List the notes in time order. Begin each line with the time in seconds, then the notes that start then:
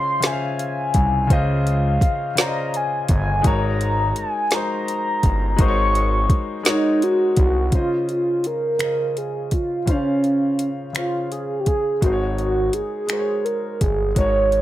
Already playing: C#3 C#4 F4 C5 D#5 C6
0.20 C#3 C#4 F4, snare, closed hi-hat
0.25 C5 E5 G#5
0.32 F5
0.59 closed hi-hat
0.94 C2, kick, closed hi-hat
1.27 C#3 C#4 F4 C5, kick, closed hi-hat
1.31 C#2 D#5 F5
1.67 closed hi-hat
2.01 G1, kick, closed hi-hat
2.35 C#3 C#4 F4 C5, snare, closed hi-hat
2.41 D5 A#5
2.48 D#5
2.74 G#5, closed hi-hat
3.08 G1 G#5, kick, closed hi-hat
3.42 G#3 D#4 F#4, kick, closed hi-hat
3.46 G#1 A#4 C#5 A#5
3.81 closed hi-hat
4.16 G1 G#5, closed hi-hat
4.50 G#3 D#4 F#4 A#5, snare, closed hi-hat
4.55 A#4 C5
4.88 closed hi-hat
5.23 G1, kick, closed hi-hat
5.56 G#1 G#3 D#4 F#4 A#4, kick, closed hi-hat
5.61 C5 C#6
5.68 C#5
5.95 closed hi-hat
6.30 C2, kick, closed hi-hat
6.63 G#3 D#4 F#4 A#4, snare, closed hi-hat
6.68 D#4 C#5
7.02 F#4, closed hi-hat
7.37 C2 F#4, kick, closed hi-hat
7.70 C#3 C#4 D#4, kick, closed hi-hat
7.74 F4 C5 D#5
7.80 F4
8.09 F4, closed hi-hat
8.44 A#4, closed hi-hat
8.79 C#3 C#4 F4 C5, finger snap, closed hi-hat
8.84 D#5
9.17 G#4, closed hi-hat
9.51 F4, kick, closed hi-hat
9.86 C#3 C#4 F4 C5, kick, closed hi-hat
9.91 F5
10.24 closed hi-hat
10.59 closed hi-hat
10.93 C#3 C#4 F4, finger snap, closed hi-hat
10.97 C5 F5
11.32 G#4, closed hi-hat
11.60 G4
11.66 G#4, kick, closed hi-hat
12.01 G#1 G#3 D#4 F#4 A#4, kick, closed hi-hat
12.06 C5
12.13 C#5
12.38 F#4, closed hi-hat
12.73 G1 G#4, closed hi-hat
13.07 G#3 D#4 F#4, finger snap, closed hi-hat
13.12 A#4 C5
13.19 C#5
13.45 A#4, closed hi-hat
13.81 G1 G#4, kick, closed hi-hat
14.15 G#1 G#3 D#4 F#4 C#5, kick, closed hi-hat
14.19 A#4 C#5
14.52 closed hi-hat